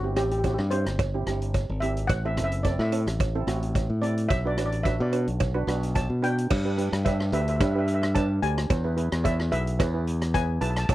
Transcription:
Already playing: fingered electric bass G1, steel pan F#4
0.03 steel pan C4 E4 G4
0.16 fingered electric bass A1, steel pan C4 E4 G4, cross-stick, closed hi-hat, cowbell
0.24 steel pan G4
0.31 steel pan G4, closed hi-hat
0.39 steel pan G4
0.44 steel pan C4 E4 F#4 G4, kick, closed hi-hat, cowbell
0.54 steel pan G4
0.58 fingered electric bass G2, cross-stick
0.71 steel pan C4 E4 G4 C5, closed hi-hat, cowbell
0.86 fingered electric bass G1, cross-stick, closed hi-hat
0.99 kick, closed hi-hat, cowbell
1.14 steel pan C4 E4 G4
1.27 fingered electric bass G1, steel pan C4 E4 G4, cross-stick, closed hi-hat
1.42 closed hi-hat
1.54 kick, closed hi-hat, cowbell
1.69 fingered electric bass G#1
1.80 steel pan C4 E4 G4 E5, closed hi-hat
1.97 closed hi-hat
2.07 fingered electric bass A1, steel pan F#5, kick, closed hi-hat, cowbell
2.25 steel pan C4 E4 A4 E5
2.37 fingered electric bass F#1, steel pan C4 E4 A4, cross-stick, closed hi-hat
2.44 steel pan E5
2.52 closed hi-hat
2.63 steel pan C4 E4 A4 D5, kick, closed hi-hat, cowbell
2.79 fingered electric bass A2, steel pan E5, cross-stick
2.92 steel pan C4 E4 A4, closed hi-hat, cowbell
3.07 fingered electric bass A1, cross-stick, closed hi-hat
3.20 kick, closed hi-hat, cowbell
3.35 steel pan C4 E4 A4
3.47 fingered electric bass A1, steel pan C4 E4 F#4, cross-stick, closed hi-hat
3.63 closed hi-hat
3.75 kick, closed hi-hat, cowbell
3.90 fingered electric bass A2
4.02 steel pan C4 E4 A4 D5, closed hi-hat
4.18 closed hi-hat
4.29 fingered electric bass B1, steel pan E5, kick, closed hi-hat, cowbell
4.45 steel pan D4 F#4 B4 D5
4.57 fingered electric bass A1, steel pan D4 F#4 B4, cross-stick, closed hi-hat, cowbell
4.66 steel pan D5
4.72 closed hi-hat
4.83 steel pan D4 F#4 B4 E5, kick, closed hi-hat, cowbell
5.00 fingered electric bass B2, steel pan D5
5.13 steel pan D4 F#4 B4, closed hi-hat, cowbell
5.28 fingered electric bass B1, closed hi-hat
5.40 kick, closed hi-hat, cowbell
5.54 steel pan D4 F#4 B4
5.67 fingered electric bass B1, steel pan D4 F#4 B4, cross-stick, closed hi-hat
5.83 closed hi-hat
5.95 steel pan A5, kick, closed hi-hat, cowbell
6.10 fingered electric bass B2
6.22 steel pan D4 F#4 B4 G5, closed hi-hat
6.38 closed hi-hat
6.51 fingered electric bass G2, kick, crash, cowbell
6.65 steel pan D4 G4 B4
6.78 steel pan D4 G4 B4, closed hi-hat
6.92 fingered electric bass G2, cross-stick, closed hi-hat
7.05 steel pan D4 G4 B4 E5, kick, closed hi-hat, cowbell
7.20 cross-stick
7.32 fingered electric bass D2, steel pan D4 G4 B4 E5, closed hi-hat
7.42 steel pan E5
7.48 steel pan E5, closed hi-hat
7.56 steel pan G4 E5
7.60 fingered electric bass G2, steel pan D4 B4 E5, kick, cross-stick, closed hi-hat, cowbell
7.71 steel pan D4 G4 E5
7.75 steel pan B4 E5
7.86 steel pan E5, closed hi-hat
7.94 steel pan E5
8.02 steel pan E5, cross-stick, closed hi-hat
8.15 steel pan D4 G4 B4 A5, kick, closed hi-hat, cowbell
8.42 fingered electric bass D2, steel pan D4 G4 D5 G#5, closed hi-hat
8.58 cross-stick, closed hi-hat
8.70 fingered electric bass E2, kick, closed hi-hat, cowbell
8.84 steel pan E4 G#4 B4
8.97 steel pan E4 G#4 B4, closed hi-hat
9.12 fingered electric bass E2, cross-stick, closed hi-hat
9.24 steel pan E4 G#4 D5 E5, kick, closed hi-hat, cowbell
9.40 cross-stick
9.52 fingered electric bass B1, steel pan E4 G#4 B4 E5, closed hi-hat
9.67 closed hi-hat
9.79 fingered electric bass E2, steel pan E4 G#4 B4, kick, cross-stick, closed hi-hat, cowbell
9.94 steel pan E4 G#4 B4
10.07 closed hi-hat
10.22 cross-stick, closed hi-hat
10.34 steel pan E4 G#4 B4 G#5, kick, closed hi-hat, cowbell
10.61 fingered electric bass B1, steel pan E4 G#4 B4 A5, closed hi-hat
10.70 steel pan A5
10.76 steel pan A5, cross-stick, closed hi-hat
10.85 fingered electric bass A1, steel pan A5, closed hi-hat
10.89 kick, cowbell

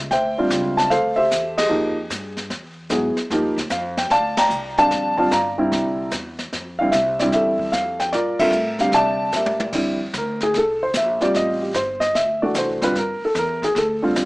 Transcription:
0.11 upright bass D2, upright piano C5 E5 G5, brush sweep, kick, snare
0.38 upright piano G3 C4 D4 F4
0.50 upright bass C#2, kick, snare, hi-hat pedal
0.77 upright piano A5, snare
0.90 upright bass D2, upright piano A4 C5 F5, brush sweep, kick, snare
1.16 upright piano G4 C5 E5
1.31 upright bass E2, kick, snare, hi-hat pedal
1.58 upright piano G4 G#4 D#5, snare, ride
1.69 upright bass F2, upright piano F3 A#3 D#4 G4, brush sweep
2.10 upright bass G2, kick, snare, hi-hat pedal
2.37 snare
2.50 upright bass E2, brush sweep, kick, snare
2.89 upright bass G#2, upright piano F#3 B3 E4 G#4, kick, snare, hi-hat pedal
3.17 snare
3.30 upright bass G2, upright piano F3 A#3 D#4 G4, brush sweep, kick, snare
3.43 upright bass D#2
3.56 upright bass D2, snare
3.70 upright bass F2, upright piano F5, kick, snare, hi-hat pedal
3.97 upright piano G5, snare
4.10 upright bass D2, upright piano D5 F5 A5, brush sweep, kick, snare
4.37 upright piano D5 G5 A#5, snare, ride
4.50 upright bass C2, hi-hat pedal
4.78 upright piano D3 G3 C4 D4 D5 F5 A5, snare
4.91 upright bass A#1, brush sweep, kick, snare
5.18 upright piano D3 G3 C4 F4 A5, kick
5.31 upright bass G1, upright piano D5 F5 A#5, kick, snare, hi-hat pedal
5.58 upright piano D3 G3 C4 E4
5.72 upright bass C2, brush sweep, kick, snare
6.11 upright bass E2, kick, snare, hi-hat pedal
6.39 snare
6.53 upright bass F2, brush sweep, kick, snare
6.79 upright piano D3 G3 C4 E4 F5
6.92 upright bass C2, upright piano E5, kick, snare, hi-hat pedal
7.19 upright piano D3 G3 C4 E4 D5, snare
7.32 upright bass E2, upright piano G4 A4 E5, brush sweep, kick, snare
7.59 kick
7.72 upright bass F2, upright piano F5, kick, snare, hi-hat pedal
8.00 upright piano G5, snare
8.13 upright bass G2, upright piano F4 A#4 D5, brush sweep, kick, snare
8.39 upright piano D3 G3 C4 F4 A4 A#4 E5, kick, crash
8.51 upright bass A2, hi-hat pedal
8.79 upright piano D3 G3 C4 G4 F5, snare
8.92 upright bass C3, upright piano D5 E5 A5, brush sweep, kick, snare
9.32 upright bass A#2, snare, hi-hat pedal
9.36 upright piano G4 A#4 E5
9.46 high tom
9.60 high tom
9.72 upright bass F2, upright piano D3 G3 C4 E4, brush sweep, kick, snare, crash
10.13 upright bass D2, kick, snare, hi-hat pedal
10.18 upright piano A#4
10.41 upright piano G#4, snare
10.54 upright bass C2, brush sweep, kick, snare
10.58 upright piano A4
10.83 upright piano C5
10.93 upright bass A#1, upright piano E5, kick, snare, hi-hat pedal
11.21 upright piano G3 C4 F4 G4 D5, snare
11.34 upright bass A1, upright piano D#5, brush sweep, kick, snare
11.62 upright piano G4
11.74 upright bass G1, upright piano C5, kick, snare, hi-hat pedal
12.00 upright piano D#5, snare
12.14 upright bass D2, upright piano E5, brush sweep, kick, snare
12.42 upright piano E3 A3 D4 F#4 D5
12.54 upright bass C2, upright piano C5, kick, snare, hi-hat pedal
12.82 upright piano D3 G3 C4 F4 B4, snare
12.95 upright bass G2, upright piano A#4, brush sweep, kick, snare
13.21 upright piano A4, muted upright bass stroke
13.35 upright bass E2, upright piano A#4, kick, snare, hi-hat pedal
13.62 upright piano G#4, kick, snare
13.75 upright bass D2, upright piano A4, brush sweep, kick, snare
14.02 upright piano D3 G3 C4 F4
14.16 upright bass F2, kick, snare, hi-hat pedal

